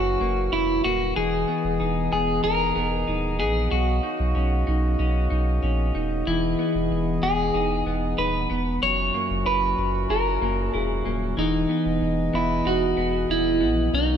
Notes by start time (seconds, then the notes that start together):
Already playing: F#1 F#2 E3 F#3 A#3 C#4 E4 F#4
0.21 F#1 A#3
0.52 E1 E4
0.84 D#1 A#3 F#4
1.16 E1 E3 G#3 B3 G#4 D#5
1.48 B3
1.64 E1
1.80 E1 D#4
2.12 E1 B3 G#4
2.44 E1 D#4 A#4
2.75 E1 B3
3.07 D#1 D#4
3.39 A#1 B3 G#4
3.71 B1 C#3 A#3 F#4
4.03 D#4
4.20 B1
4.35 B1 C#4
4.67 B1 D#4
4.99 B1 C#4
5.30 B1 D#4
5.63 A#1 C#4
5.95 D#1 D#4
6.27 E1 E3 G#3 E4 G#4
6.59 B3
6.75 E1
6.91 E1
7.22 E1 B3 G#4
7.54 E1 D#4
7.86 E1 B3
8.18 D#1 D#4 B4
8.50 E1 B3
8.82 F#1 F#2 A#2 E3 F#3 C#4 F#4 C#5
9.14 A#3
9.30 F#1
9.46 F#1 E4 B4
9.78 F#1
10.10 F#1 E4 A#4
10.42 F#1 A#3
10.74 E1 E4 G#4
11.05 D#1 A#3
11.37 E1 E3 G#3 B3 D#4 G#4 D#5
11.69 B3
11.86 E1
12.01 E1
12.33 E1 B3 E4
12.65 E1 D#4 F#4
12.97 E1 B3
13.29 D#1 E4
13.61 A#1 B3
13.93 B1 D#3 A#3 C#4 D#4 F#4